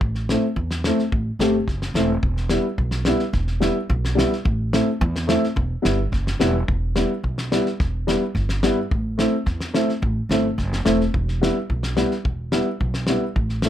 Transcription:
0.01 upright bass A1, kick
0.15 snare
0.29 upright piano A3 C4 E4, snare
0.56 upright bass E2, kick
0.71 snare
0.84 upright piano A3 C4 E4, snare
0.99 snare
1.12 upright bass A1, kick
1.39 upright bass G1, upright piano A3 C4 G4, snare
1.68 upright bass F#1, kick, snare
1.82 snare
1.94 upright bass E1, upright piano A3 C4 E4, snare
2.23 upright bass E1, kick
2.37 snare
2.49 upright piano G3 B3 E4, snare
2.78 upright bass B1, kick
2.91 snare
3.05 upright piano G3 B3 E4, snare
3.19 snare
3.33 upright bass E1, kick, snare
3.47 snare
3.60 upright piano G3 B3 E4, snare
3.90 upright bass B1, kick
4.05 snare
4.15 upright piano G3 B3 E4, snare
4.33 snare
4.45 upright bass A1, kick
4.73 upright piano A3 C4 E4, snare
5.01 upright bass E2, kick
5.16 snare
5.27 upright piano A3 C4 E4, snare
5.44 snare
5.56 upright bass E1, kick
5.82 upright bass G1, upright piano G3 B3 E4, snare
6.12 upright bass F#1, kick, snare
6.27 snare
6.40 upright bass E1, upright piano G3 B3 E4, snare
6.68 upright bass E1, kick
6.96 upright piano G3 B3 E4, snare
7.23 upright bass B1, kick
7.38 snare
7.52 upright piano G3 B3 E4, snare
7.66 snare
7.80 upright bass E1, kick, snare
8.07 upright piano G3 B3 E4, snare
8.35 upright bass G1, kick, snare
8.49 snare
8.63 upright piano G3 B3 E4, snare
8.91 upright bass A1, kick
9.18 upright piano A3 C4 E4, snare
9.46 upright bass E2, kick, snare
9.61 snare
9.74 upright piano A3 C4 E4, snare
9.89 snare
10.02 upright bass A1, kick
10.29 upright bass G1, upright piano A3 C4 E4, snare
10.58 upright bass F#1, kick, snare
10.73 snare
10.85 upright bass E1, upright piano A3 C4 E4, snare
11.01 snare
11.14 upright bass E1, kick
11.29 snare
11.41 upright piano G3 B3 E4, snare
11.70 upright bass B1, kick
11.83 snare
11.96 upright piano G3 B3 E4, snare
12.11 snare
12.25 upright bass E1, kick
12.52 upright piano G3 B3 E4, snare
12.80 upright bass B1, kick
12.94 snare
13.07 upright piano G3 B3 E4, snare
13.36 upright bass A1, kick
13.49 snare
13.62 upright piano A3 C4, snare

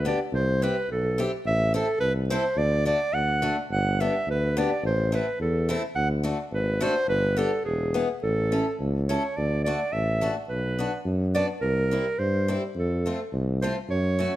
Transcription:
Already playing: tuba D2
0.05 steel-string acoustic guitar B3 D4 G4, clarinet D5
0.33 tuba C2, clarinet C5
0.62 steel-string acoustic guitar C4 E4 G4, clarinet B4
0.90 tuba B1, clarinet A4
1.18 steel-string acoustic guitar C4 E4 G4
1.45 tuba A1, clarinet E5
1.74 steel-string acoustic guitar C4 E4 A4, clarinet A4
2.00 tuba C2, clarinet B4
2.29 steel-string acoustic guitar C4 E4 A4, clarinet C5
2.56 tuba D2, clarinet D5
2.85 steel-string acoustic guitar A3 D4 F#4, clarinet D5
3.13 tuba D2, clarinet F#5
3.42 steel-string acoustic guitar A3 D4 F#4
3.70 tuba G1, clarinet F#5
4.00 steel-string acoustic guitar B3 D4 G4, clarinet E5
4.27 tuba D2, clarinet B4
4.57 steel-string acoustic guitar B3 D4 G4, clarinet D5
4.83 tuba A1, clarinet C5
5.12 steel-string acoustic guitar A3 C4 E4, clarinet B4
5.39 tuba E2, clarinet A4
5.69 steel-string acoustic guitar A3 C4 E4
5.95 tuba D2, clarinet F#5
6.24 steel-string acoustic guitar A3 D4 F#4
6.51 tuba G#1, clarinet B4
6.81 steel-string acoustic guitar A3 D4 F#4, clarinet C5
7.07 tuba G1, clarinet B4
7.37 steel-string acoustic guitar B3 D4 G4, clarinet A4
7.65 tuba E1, clarinet G#4
7.94 steel-string acoustic guitar B3 E4 G#4
8.22 tuba A1, clarinet A4
8.52 steel-string acoustic guitar C#4 E4 A4
8.79 tuba C#2
9.09 steel-string acoustic guitar C#4 E4 A4, clarinet C#5
9.37 tuba D2, clarinet D5
9.64 steel-string acoustic guitar A3 D4 F#4, clarinet D5
9.93 tuba A1, clarinet E5
10.21 steel-string acoustic guitar A3 D4 F#4
10.49 tuba B1, clarinet B4
10.79 steel-string acoustic guitar B3 D4 F#4
11.05 tuba F#2
11.35 steel-string acoustic guitar B3 D4 F#4, clarinet D5
11.61 tuba C2, clarinet A#4
11.91 steel-string acoustic guitar G3 C4 E4
12.19 tuba G2, clarinet C5
12.48 steel-string acoustic guitar G3 C4 E4
12.76 tuba F2, clarinet A4
13.06 steel-string acoustic guitar A3 C4 F4
13.33 tuba C2
13.62 steel-string acoustic guitar A3 C4 F4, clarinet C5
13.89 tuba F#2, clarinet C#5
14.19 steel-string acoustic guitar A3 C#4 F#4

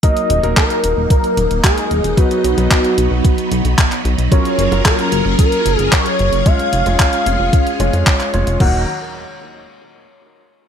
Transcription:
0.03 grand piano F#3 A#3 D#4 A#4, string machine F#3 A#3 D#4, analog synth lead D#5, kick, closed hi-hat
0.17 closed hi-hat
0.30 analog synth bass D#1, closed hi-hat
0.43 analog synth bass D#1, grand piano F#3 A#3 D#4 A#4, closed hi-hat
0.57 analog synth lead A#4, kick, clap, closed hi-hat
0.70 closed hi-hat
0.83 analog synth bass D#1, closed hi-hat
0.97 analog synth bass D#1
1.10 analog synth lead A#4, kick, closed hi-hat
1.24 closed hi-hat
1.37 analog synth bass D#1, closed hi-hat
1.51 analog synth bass D#1, closed hi-hat
1.64 analog synth lead G#4, kick, clap, closed hi-hat
1.78 closed hi-hat
1.91 analog synth bass D#1, closed hi-hat
2.04 analog synth bass D#1, closed hi-hat
2.17 grand piano F#3 B3 D#4 B4, string machine B3, analog synth lead F#4, kick, closed hi-hat
2.31 closed hi-hat
2.44 analog synth bass B1, closed hi-hat
2.58 analog synth bass B1, grand piano F#3 B3 D#4 B4, closed hi-hat
2.71 analog synth lead F#4, kick, clap, closed hi-hat
2.85 closed hi-hat
2.98 analog synth bass B1, closed hi-hat
3.11 analog synth bass B1
3.25 kick, closed hi-hat
3.38 closed hi-hat
3.51 analog synth bass B1, closed hi-hat
3.65 analog synth bass B1, closed hi-hat
3.78 kick, clap, closed hi-hat
3.92 clap, closed hi-hat
4.05 analog synth bass B1, closed hi-hat
4.18 analog synth bass B1, closed hi-hat
4.32 grand piano F#3 C#4 F4 A#4, string machine C#4 F4 G#4 A#4, analog synth lead C#5, kick, closed hi-hat
4.45 closed hi-hat
4.58 analog synth bass F#1, closed hi-hat
4.72 analog synth bass F#1, grand piano F#3 C#4 F4 A#4, closed hi-hat
4.85 analog synth lead A#4, kick, clap, closed hi-hat
4.99 closed hi-hat
5.12 analog synth bass F#1, closed hi-hat
5.25 analog synth bass F#1
5.39 analog synth lead A#4, kick, closed hi-hat
5.52 closed hi-hat
5.66 analog synth bass F#1, closed hi-hat
5.78 analog synth bass F#1, analog synth lead G#4, closed hi-hat
5.92 analog synth lead C#5, kick, clap, closed hi-hat
6.06 closed hi-hat
6.19 analog synth bass F#1, closed hi-hat
6.32 analog synth bass F#1, closed hi-hat
6.46 grand piano G#3 C#4 F4 C#5, string machine C#4 F4, analog synth lead F5, kick, closed hi-hat
6.59 closed hi-hat
6.73 analog synth bass F1, closed hi-hat
6.86 analog synth bass F1, grand piano G#3 C#4 F4 C#5, closed hi-hat
6.99 analog synth lead F5, kick, clap, closed hi-hat
7.13 closed hi-hat
7.26 analog synth bass F1, closed hi-hat
7.40 analog synth bass F1
7.53 kick, closed hi-hat
7.67 closed hi-hat
7.80 analog synth bass F1, grand piano G#3 C#4 F4 C#5, closed hi-hat
7.93 analog synth bass F2, closed hi-hat
8.07 kick, clap, closed hi-hat
8.20 clap, closed hi-hat
8.33 analog synth bass F1, grand piano G#3 C#4 F4 C#5, closed hi-hat
8.47 analog synth bass F1, closed hi-hat
8.60 analog synth bass D#1, string machine D#3 D#4 F#4 A#4 A#5, grand piano F#3 A#3 D#4 A#4, analog synth lead F#5, kick, crash

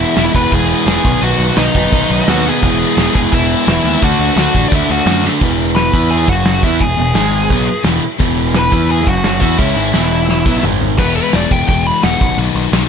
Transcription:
Already playing: overdriven electric guitar E2 B2 E3 G#3 B3 E4, lead electric guitar E4 E5
0.16 picked electric bass E1, overdriven electric guitar E2 B2 E3 G#3 B3 E4, snare, crash
0.34 picked electric bass E1, overdriven electric guitar E2 B2 E3 G#3 B3 E4, lead electric guitar B4 B5, kick, crash
0.52 picked electric bass E1, overdriven electric guitar E2 B2 E3 G#3 B3 E4, lead electric guitar G#4 G#5, kick, crash
0.70 crash
0.87 picked electric bass E1, overdriven electric guitar E2 B2 E3 G#3 B3 E4, lead electric guitar G#4 G#5, snare, crash
1.05 picked electric bass B1, overdriven electric guitar B2 D#3 F#3 B3 D#4, kick, crash
1.22 picked electric bass B1, overdriven electric guitar B2 D#3 F#3 B3 D#4, lead electric guitar F#4 F#5, crash
1.39 picked electric bass B1, crash
1.57 picked electric bass B1, overdriven electric guitar B2 D#3 F#3 B3 D#4, lead electric guitar D#4 D#5, snare, crash
1.75 picked electric bass F#1, overdriven electric guitar B2 D#3 F#3 B3 D#4, kick, crash
1.92 picked electric bass B1, overdriven electric guitar B2 D#3 F#3 B3 D#4, kick, crash
2.10 picked electric bass B1, crash
2.28 picked electric bass D#2, overdriven electric guitar B2 D#3 F#3 B3 D#4, lead electric guitar F#4 F#5, snare, crash
2.45 overdriven electric guitar B2 D#3 F#3 B3 D#4, lead electric guitar G#4 G#5, crash
2.62 picked electric bass E1, overdriven electric guitar E2 B2 E3 G#3 B3 E4, kick, crash
2.81 crash
2.97 picked electric bass E1, overdriven electric guitar E2 B2 E3 G#3 B3 E4, snare, crash
3.15 picked electric bass E1, overdriven electric guitar E2 B2 E3 G#3 B3 E4, lead electric guitar G#4 G#5, kick, crash
3.33 picked electric bass E1, overdriven electric guitar E2 B2 E3 G#3 B3 E4, lead electric guitar E4 E5, kick, crash
3.51 crash
3.67 picked electric bass E1, overdriven electric guitar E2 B2 E3 G#3 B3 E4, snare, crash
3.84 picked electric bass D#2, overdriven electric guitar E2 B2 E3 G#3 B3 E4, crash
4.02 picked electric bass D2, overdriven electric guitar D3 A3 D4 F#4, lead electric guitar F#4 F#5, kick, crash
4.19 picked electric bass D2, crash
4.36 picked electric bass D2, overdriven electric guitar D3 A3 D4 F#4, lead electric guitar F#4 F#5, snare, crash
4.54 picked electric bass A1, overdriven electric guitar D3 A3 D4 F#4, kick, crash
4.68 picked electric bass D2, overdriven electric guitar D3 A3 D4, lead electric guitar D5, kick
4.72 lead electric guitar E4 E5, overdriven electric guitar F#4, crash
4.89 picked electric bass D2, lead electric guitar F#4 F#5, crash
5.06 picked electric bass F#2, overdriven electric guitar D3 A3 D4 F#4, snare, crash
5.24 overdriven electric guitar D3 A3 D4 F#4, snare
5.41 picked electric bass E1, overdriven electric guitar E2 B2 E3, kick, crash
5.75 lead electric guitar B4 B5, snare, crash
5.92 picked electric bass E2, overdriven electric guitar E3 B3 E4, kick
6.11 lead electric guitar G#4 G#5, crash
6.27 picked electric bass F#1, overdriven electric guitar F#2 C#3 F#3, lead electric guitar F#5, kick
6.32 lead electric guitar F#4
6.46 snare, crash
6.62 picked electric bass E2, overdriven electric guitar E3 B3 E4, lead electric guitar E5, kick
6.66 lead electric guitar E4
6.80 picked electric bass E1, overdriven electric guitar E2 B2, lead electric guitar G#4 G#5, kick, crash
6.97 picked electric bass E1, overdriven electric guitar E2 B2
7.14 picked electric bass G#1, overdriven electric guitar G#2 D#3 G#3, snare, crash
7.50 picked electric bass B1, overdriven electric guitar B2 F#3 B3, kick, crash
7.67 muted overdriven electric guitar stroke, muted picked electric bass stroke
7.84 picked electric bass E1, overdriven electric guitar E2 B2 E3, snare, crash
8.02 muted overdriven electric guitar stroke, muted picked electric bass stroke
8.19 picked electric bass E1, overdriven electric guitar E2 B2 E3, kick, crash
8.55 lead electric guitar B4 B5, snare, crash
8.71 picked electric bass E2, overdriven electric guitar E3 B3 E4, kick
8.90 lead electric guitar G#4 G#5, crash
9.05 picked electric bass F#1, overdriven electric guitar F#2 C#3 F#3, lead electric guitar F#4 F#5, kick
9.24 snare, crash
9.40 picked electric bass E2, overdriven electric guitar E3 B3 E4, lead electric guitar F#4 F#5, kick, crash
9.58 picked electric bass C#2, overdriven electric guitar C#3 G#3 C#4, lead electric guitar E4 E5, kick, crash
9.75 picked electric bass G#1, overdriven electric guitar G#2 D#3 G#3
9.93 picked electric bass E1, overdriven electric guitar E2 B2 E3, snare, crash
10.29 snare
10.46 picked electric bass B1, overdriven electric guitar B2 F#3 B3, kick
10.62 picked electric bass G#1, overdriven electric guitar G#2 D#3 G#3, mid tom
10.81 floor tom
10.98 picked electric bass E1, overdriven electric guitar E3 G#3 B3 E4, lead electric guitar B4, kick, crash
11.16 lead electric guitar B4
11.33 picked electric bass E1, overdriven electric guitar E3 G#3 B3 E4, lead electric guitar D5, snare, open hi-hat
11.51 picked electric bass E1, overdriven electric guitar E3 G#3 B3 E4, lead electric guitar G5, kick
11.68 picked electric bass E1, overdriven electric guitar E3 G#3 B3 E4, lead electric guitar G5, kick, open hi-hat
11.87 lead electric guitar B5
12.03 picked electric bass E1, overdriven electric guitar E3 G#3 B3 E4, lead electric guitar F#5, snare, open hi-hat
12.20 picked electric bass B1, overdriven electric guitar B2 D#3 F#3 B3 D#4, kick
12.38 picked electric bass B1, overdriven electric guitar B2 D#3 F#3 B3 D#4, open hi-hat
12.55 picked electric bass B1
12.72 picked electric bass B1, overdriven electric guitar B2 D#3 F#3 B3 D#4, snare, open hi-hat

